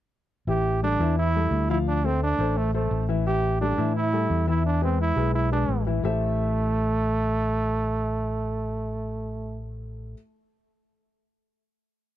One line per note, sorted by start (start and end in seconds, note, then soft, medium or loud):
0.47 0.96 A1 medium
0.47 0.76 E3 medium
0.47 0.76 E4 medium
0.47 0.81 G4 loud
0.47 0.76 E5 medium
0.82 0.97 G3 medium
0.82 1.15 D4 loud
0.82 0.97 G4 medium
0.82 0.97 A4 medium
0.99 1.48 E2 medium
0.99 1.28 E3 medium
0.99 1.28 E4 medium
0.99 1.29 E5 medium
1.19 1.66 E4 loud
1.35 1.63 G3 medium
1.35 1.64 G4 medium
1.35 1.64 A4 medium
1.51 2.32 D2 medium
1.69 1.98 F3 medium
1.69 1.78 E4 medium
1.69 1.98 F4 medium
1.69 1.98 F5 medium
1.88 2.07 D4 medium
2.04 2.33 A3 medium
2.04 2.22 C4 medium
2.04 2.33 A4 medium
2.04 2.33 C5 medium
2.23 2.59 D4 loud
2.39 2.87 A1 medium
2.39 2.67 A3 medium
2.39 2.68 A4 medium
2.39 2.68 C5 medium
2.57 2.74 A3 medium
2.74 3.02 A3 medium
2.74 3.06 A3 medium
2.74 3.02 A4 medium
2.74 3.03 C5 medium
2.91 3.72 A1 medium
3.09 3.23 E3 medium
3.09 3.23 E4 medium
3.09 3.23 E5 medium
3.26 3.54 E3 medium
3.26 3.55 E4 medium
3.26 3.59 G4 loud
3.26 3.55 E5 medium
3.61 3.75 G3 medium
3.61 3.93 D4 loud
3.61 3.75 G4 medium
3.61 3.75 A4 medium
3.78 4.26 A2 medium
3.78 4.06 E3 medium
3.78 4.06 E4 medium
3.78 4.07 E5 medium
3.96 4.44 E4 loud
4.13 4.41 G3 medium
4.13 4.41 G4 medium
4.13 4.42 A4 medium
4.30 5.11 E2 medium
4.47 4.76 E3 medium
4.47 4.76 E4 medium
4.47 4.65 E4 medium
4.47 4.76 E5 medium
4.66 4.82 D4 medium
4.82 5.10 G#3 medium
4.82 4.99 C4 loud
4.82 5.11 G#4 medium
4.82 5.11 B4 medium
5.01 5.33 E4 medium
5.16 5.65 B1 medium
5.16 5.45 G#3 medium
5.16 5.46 G#4 medium
5.16 5.46 B4 medium
5.35 5.51 E4 medium
5.52 5.80 G#3 medium
5.52 5.84 D4 medium
5.52 5.81 G#4 medium
5.52 5.81 B4 medium
5.69 6.00 A1 medium
5.87 6.01 E3 medium
5.87 6.01 E4 medium
5.87 6.01 E5 medium
6.03 10.14 A1 medium
6.03 10.14 A3 medium
6.03 9.58 A3 medium
6.03 10.14 E4 medium
6.03 10.14 G4 medium
6.03 10.14 A4 medium
6.03 10.15 C5 medium
6.03 10.15 E5 medium